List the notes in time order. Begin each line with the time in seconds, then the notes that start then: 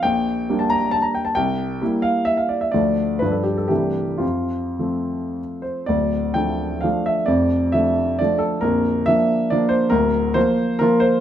0.03 A#1 G5
0.49 G3 A#3 D4
0.59 A5
0.70 A#5
0.91 A5
1.02 A#5
1.15 G5
1.25 A5
1.35 C2 G5
1.82 G3 A#3 E4
2.02 F5
2.25 E5
2.37 F5
2.49 D5
2.61 E5
2.72 D2 F3 A3 D4 D5
3.19 G2 F3 G3 D4 B4
3.31 A4
3.43 G4
3.57 A4
3.68 C2 E3 A3 D4 G4
4.18 F2 F4
4.79 F3 A3 C4
5.62 C5
5.86 D1 D2 D5
6.34 F3 A3 D4 G5
6.81 F3 A3 F5
6.85 D4
7.06 E5
7.26 F1 F2 D5
7.72 F3 A3 D4 E5
8.19 F3 A3 D4 D5
8.39 A4
8.61 A#0 A#1 A#4
9.06 F3 A#3 D4 E5
9.50 F3 A#3 D4 D5
9.69 C5
9.90 D1 D2 A#4
10.34 F3 A#3 F4 C5
10.79 F3 A#3 F4 A#4
11.00 C5